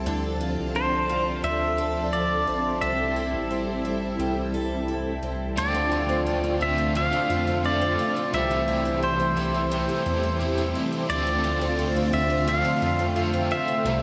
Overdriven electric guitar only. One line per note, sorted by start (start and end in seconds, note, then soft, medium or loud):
5.56 6.60 D3 medium
5.56 6.94 A3 medium
5.56 6.65 C4 medium
5.56 6.62 F4 medium
5.60 6.59 A4 medium
6.60 6.96 F4 soft
6.60 6.95 A4 medium
6.65 6.95 C4 soft
6.94 7.63 A3 medium
6.94 7.65 C4 medium
6.98 7.66 F4 medium
6.98 7.68 A4 medium
7.63 8.34 A3 medium
7.63 8.34 C4 medium
7.63 8.35 F4 medium
7.68 8.36 A4 medium
8.32 9.36 C3 medium
8.32 9.37 E3 medium
8.32 9.37 G3 medium
8.32 9.39 C4 medium
8.32 9.37 E4 medium
8.36 9.35 A4 medium
9.36 9.71 C4 soft
9.36 9.72 E4 soft
9.36 9.71 A4 medium
9.41 9.69 G3 soft
9.70 10.38 G3 medium
9.70 10.41 C4 medium
9.74 10.42 E4 medium
9.74 10.44 A4 medium
10.39 11.09 G3 medium
10.39 11.10 C4 medium
10.43 11.11 E4 medium
10.43 11.15 A4 medium
11.07 12.46 D3 medium
11.07 12.46 A3 medium
11.12 12.48 C4 medium
11.12 12.49 F4 medium
11.12 12.51 A4 medium
12.46 13.15 A3 medium
12.46 13.17 C4 medium
12.46 13.18 F4 medium
12.52 13.20 A4 medium
13.15 13.86 A3 medium
13.15 13.87 C4 medium
13.15 13.87 F4 medium
13.21 13.88 A4 medium
13.84 14.02 C3 medium
13.84 14.02 E3 medium
13.84 14.02 G3 medium
13.84 14.02 C4 medium
13.84 14.02 E4 medium
13.84 14.02 A4 medium